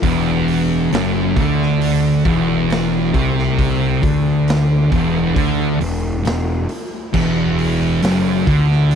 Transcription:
0.02 picked electric bass E1, distorted electric guitar E2, kick, open hi-hat
0.48 open hi-hat
0.91 picked electric bass F#1, distorted electric guitar F#2, snare, open hi-hat
1.36 picked electric bass D2, distorted electric guitar D3, kick, open hi-hat
1.62 snare
1.82 open hi-hat
2.25 picked electric bass E1, distorted electric guitar E2, kick, open hi-hat
2.70 snare, open hi-hat
3.14 picked electric bass C2, distorted electric guitar C3, kick, open hi-hat
3.39 snare
3.59 kick, open hi-hat
4.02 picked electric bass D2, distorted electric guitar D3, kick, open hi-hat
4.48 snare, open hi-hat
4.90 picked electric bass E1, distorted electric guitar E2, kick, open hi-hat
5.34 picked electric bass D2, distorted electric guitar D3, kick, open hi-hat
5.80 picked electric bass E1, distorted electric guitar E2, open hi-hat
6.24 picked electric bass E1, distorted electric guitar E2, snare, open hi-hat
6.69 open hi-hat
7.13 picked electric bass E1, distorted electric guitar E2, kick, crash
7.58 open hi-hat
8.02 picked electric bass F#1, distorted electric guitar F#2, snare, open hi-hat
8.47 picked electric bass D2, distorted electric guitar D3, kick, open hi-hat
8.72 snare
8.91 open hi-hat

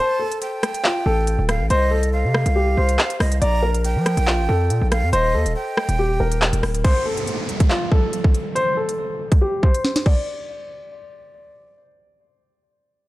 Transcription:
0.00 grand piano C5, flute A5
0.20 grand piano A4
0.32 closed hi-hat
0.42 flute G5, closed hi-hat
0.63 cross-stick, closed hi-hat
0.74 closed hi-hat
0.84 grand piano F4, clap
1.06 808-style bass A1, grand piano A4
1.27 closed hi-hat
1.39 808-style bass D1
1.49 flute F5, cross-stick, closed hi-hat
1.60 808-style bass A1
1.69 808-style bass C2, grand piano C5, flute D#5, closed hi-hat
1.91 grand piano A4
2.03 closed hi-hat
2.13 flute F5
2.24 808-style bass C3
2.34 cross-stick
2.46 808-style bass C2, closed hi-hat
2.56 grand piano G4
2.77 808-style bass C2, grand piano C5
2.89 closed hi-hat
2.99 clap
3.10 closed hi-hat
3.20 808-style bass C2, flute D#5, cross-stick, open hi-hat
3.32 closed hi-hat
3.42 808-style bass A#1, grand piano D5, flute A#5, closed hi-hat
3.63 grand piano A#4
3.74 closed hi-hat
3.84 flute G5, closed hi-hat
3.96 808-style bass F3
4.06 cross-stick, closed hi-hat
4.17 808-style bass A#1, closed hi-hat
4.27 grand piano F4, clap
4.39 808-style bass A1
4.48 808-style bass F2, grand piano A4
4.70 808-style bass A#2, closed hi-hat
4.81 808-style bass A#1
4.92 flute F5, cross-stick, closed hi-hat
5.03 808-style bass F2
5.13 808-style bass D#1, grand piano C5, flute D#5, closed hi-hat
5.34 808-style bass D#2, grand piano A4
5.46 808-style bass D#1, closed hi-hat
5.56 flute G5
5.77 cross-stick
5.89 808-style bass D#1, closed hi-hat
5.99 grand piano G4
6.20 808-style bass D#1, grand piano A#4
6.32 closed hi-hat
6.42 clap
6.53 808-style bass D#1, closed hi-hat
6.63 808-style bass D1, cross-stick, open hi-hat
6.75 closed hi-hat
6.84 grand piano C5, kick, closed hi-hat, crash, downlifter
7.06 grand piano A4
7.17 closed hi-hat
7.27 closed hi-hat
7.49 closed hi-hat
7.60 kick, closed hi-hat
7.70 grand piano F4, clap
7.91 grand piano A4, kick
8.13 closed hi-hat
8.24 kick
8.34 closed hi-hat
8.55 grand piano C5, closed hi-hat
8.77 grand piano A4
8.89 closed hi-hat
9.32 kick, closed hi-hat
9.41 grand piano G4
9.63 grand piano C5, kick
9.74 closed hi-hat
9.85 snare
9.96 snare, closed hi-hat
10.06 grand piano D5, kick, crash

